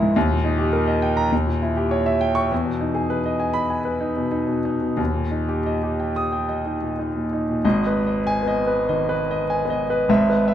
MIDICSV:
0, 0, Header, 1, 2, 480
1, 0, Start_track
1, 0, Key_signature, 5, "minor"
1, 0, Tempo, 587659
1, 125, Time_signature, 4, 2, 24, 8
1, 2048, Tempo, 607903
1, 3488, Tempo, 662252
1, 5888, Tempo, 607287
1, 8179, End_track
2, 0, Start_track
2, 0, Title_t, "Grand piano"
2, 0, Program_c, 0, 0
2, 0, Control_c, 0, 64, 127
2, 0, Note_on_c, 0, 37, 80
2, 0, Note_on_c, 0, 44, 62
2, 0, Note_on_c, 0, 64, 66
2, 0, Note_on_c, 0, 68, 68
2, 0, Note_on_c, 0, 70, 59
2, 0, Note_on_c, 0, 76, 61
2, 0, Note_on_c, 0, 80, 68
2, 0, Note_on_c, 0, 82, 100
2, 20, Note_off_c, 0, 44, 0
2, 20, Note_on_c, 0, 44, 59
2, 84, Note_off_c, 0, 64, 0
2, 89, Note_off_c, 0, 37, 0
2, 131, Note_off_c, 0, 44, 0
2, 133, Note_on_c, 0, 39, 85
2, 141, Control_c, 0, 64, 0
2, 144, Note_off_c, 0, 82, 0
2, 145, Note_off_c, 0, 70, 0
2, 145, Note_off_c, 0, 76, 0
2, 146, Note_off_c, 0, 68, 0
2, 149, Note_off_c, 0, 80, 0
2, 258, Note_on_c, 0, 46, 54
2, 288, Control_c, 0, 64, 127
2, 363, Note_on_c, 0, 63, 60
2, 437, Note_off_c, 0, 46, 0
2, 476, Note_on_c, 0, 67, 60
2, 548, Note_off_c, 0, 63, 0
2, 595, Note_on_c, 0, 70, 63
2, 665, Note_off_c, 0, 67, 0
2, 714, Note_on_c, 0, 75, 66
2, 786, Note_off_c, 0, 70, 0
2, 836, Note_on_c, 0, 79, 63
2, 907, Note_off_c, 0, 75, 0
2, 954, Note_on_c, 0, 82, 76
2, 1029, Note_off_c, 0, 79, 0
2, 1052, Note_off_c, 0, 39, 0
2, 1076, Note_off_c, 0, 82, 0
2, 1080, Note_on_c, 0, 39, 65
2, 1090, Control_c, 0, 64, 0
2, 1198, Note_on_c, 0, 46, 57
2, 1208, Control_c, 0, 64, 127
2, 1324, Note_on_c, 0, 64, 55
2, 1392, Note_off_c, 0, 46, 0
2, 1444, Note_on_c, 0, 67, 55
2, 1516, Note_off_c, 0, 64, 0
2, 1561, Note_on_c, 0, 73, 70
2, 1636, Note_off_c, 0, 67, 0
2, 1682, Note_on_c, 0, 76, 67
2, 1756, Note_off_c, 0, 73, 0
2, 1803, Note_on_c, 0, 79, 72
2, 1878, Note_off_c, 0, 76, 0
2, 1920, Note_on_c, 0, 85, 81
2, 1999, Note_off_c, 0, 79, 0
2, 2021, Note_off_c, 0, 39, 0
2, 2045, Note_off_c, 0, 85, 0
2, 2053, Note_on_c, 0, 40, 67
2, 2064, Control_c, 0, 64, 0
2, 2165, Note_on_c, 0, 47, 51
2, 2193, Control_c, 0, 64, 127
2, 2285, Note_on_c, 0, 63, 53
2, 2356, Note_off_c, 0, 47, 0
2, 2394, Note_on_c, 0, 68, 58
2, 2476, Note_off_c, 0, 63, 0
2, 2515, Note_on_c, 0, 71, 55
2, 2590, Note_off_c, 0, 68, 0
2, 2640, Note_on_c, 0, 75, 53
2, 2710, Note_off_c, 0, 71, 0
2, 2749, Note_on_c, 0, 80, 55
2, 2833, Note_off_c, 0, 75, 0
2, 2859, Note_on_c, 0, 83, 79
2, 2948, Note_off_c, 0, 80, 0
2, 2989, Note_on_c, 0, 80, 52
2, 3064, Note_off_c, 0, 83, 0
2, 3108, Note_on_c, 0, 71, 53
2, 3189, Note_off_c, 0, 80, 0
2, 3231, Note_on_c, 0, 63, 53
2, 3309, Note_off_c, 0, 71, 0
2, 3354, Note_on_c, 0, 47, 47
2, 3433, Note_off_c, 0, 63, 0
2, 3477, Note_on_c, 0, 63, 54
2, 3552, Note_off_c, 0, 47, 0
2, 3588, Note_on_c, 0, 47, 47
2, 3668, Note_off_c, 0, 63, 0
2, 3719, Note_on_c, 0, 63, 51
2, 3785, Note_off_c, 0, 47, 0
2, 3831, Note_on_c, 0, 47, 44
2, 3914, Note_off_c, 0, 63, 0
2, 3937, Note_off_c, 0, 40, 0
2, 3951, Note_on_c, 0, 39, 62
2, 3959, Note_off_c, 0, 47, 0
2, 3981, Control_c, 0, 64, 0
2, 4081, Note_on_c, 0, 46, 51
2, 4135, Control_c, 0, 64, 127
2, 4197, Note_on_c, 0, 63, 43
2, 4282, Note_off_c, 0, 46, 0
2, 4325, Note_on_c, 0, 67, 50
2, 4402, Note_off_c, 0, 63, 0
2, 4453, Note_on_c, 0, 75, 53
2, 4527, Note_off_c, 0, 67, 0
2, 4576, Note_on_c, 0, 67, 46
2, 4651, Note_off_c, 0, 75, 0
2, 4697, Note_on_c, 0, 79, 46
2, 4772, Note_off_c, 0, 67, 0
2, 4815, Note_on_c, 0, 87, 67
2, 4892, Note_off_c, 0, 79, 0
2, 4933, Note_on_c, 0, 79, 48
2, 5010, Note_off_c, 0, 87, 0
2, 5051, Note_on_c, 0, 75, 47
2, 5127, Note_off_c, 0, 79, 0
2, 5172, Note_on_c, 0, 63, 49
2, 5245, Note_off_c, 0, 75, 0
2, 5293, Note_on_c, 0, 46, 41
2, 5364, Note_off_c, 0, 63, 0
2, 5416, Note_on_c, 0, 63, 48
2, 5484, Note_off_c, 0, 46, 0
2, 5541, Note_on_c, 0, 46, 45
2, 5606, Note_off_c, 0, 63, 0
2, 5661, Note_on_c, 0, 63, 50
2, 5729, Note_off_c, 0, 46, 0
2, 5783, Note_on_c, 0, 46, 43
2, 5846, Note_off_c, 0, 63, 0
2, 5853, Note_off_c, 0, 39, 0
2, 5891, Note_on_c, 0, 32, 78
2, 5893, Note_on_c, 0, 75, 68
2, 5894, Note_off_c, 0, 46, 0
2, 5897, Note_on_c, 0, 44, 68
2, 5904, Control_c, 0, 64, 0
2, 6022, Control_c, 0, 64, 127
2, 6066, Note_on_c, 0, 71, 56
2, 6155, Note_off_c, 0, 75, 0
2, 6225, Note_on_c, 0, 75, 52
2, 6322, Note_off_c, 0, 71, 0
2, 6382, Note_on_c, 0, 80, 80
2, 6480, Note_off_c, 0, 75, 0
2, 6507, Note_on_c, 0, 59, 47
2, 6547, Note_on_c, 0, 75, 62
2, 6638, Note_off_c, 0, 80, 0
2, 6697, Note_off_c, 0, 59, 0
2, 6702, Note_on_c, 0, 71, 53
2, 6802, Note_off_c, 0, 75, 0
2, 6836, Note_off_c, 0, 32, 0
2, 6839, Note_off_c, 0, 44, 0
2, 6873, Note_on_c, 0, 51, 53
2, 6873, Note_on_c, 0, 75, 57
2, 6962, Note_off_c, 0, 71, 0
2, 7033, Note_on_c, 0, 71, 62
2, 7063, Note_off_c, 0, 51, 0
2, 7126, Note_off_c, 0, 75, 0
2, 7204, Note_on_c, 0, 75, 65
2, 7285, Note_off_c, 0, 71, 0
2, 7356, Note_on_c, 0, 80, 67
2, 7448, Note_off_c, 0, 75, 0
2, 7477, Note_on_c, 0, 59, 53
2, 7515, Note_on_c, 0, 75, 64
2, 7602, Note_off_c, 0, 80, 0
2, 7659, Note_off_c, 0, 59, 0
2, 7674, Note_on_c, 0, 71, 66
2, 7760, Note_off_c, 0, 75, 0
2, 7822, Note_on_c, 0, 32, 70
2, 7823, Note_off_c, 0, 71, 0
2, 7827, Note_on_c, 0, 76, 73
2, 7829, Note_on_c, 0, 44, 79
2, 7831, Control_c, 0, 64, 0
2, 7976, Control_c, 0, 64, 127
2, 7986, Note_on_c, 0, 71, 60
2, 8071, Note_off_c, 0, 76, 0
2, 8129, Note_on_c, 0, 76, 68
2, 8179, Note_off_c, 0, 32, 0
2, 8179, Note_off_c, 0, 44, 0
2, 8179, Note_off_c, 0, 71, 0
2, 8179, Note_off_c, 0, 76, 0
2, 8179, End_track
0, 0, End_of_file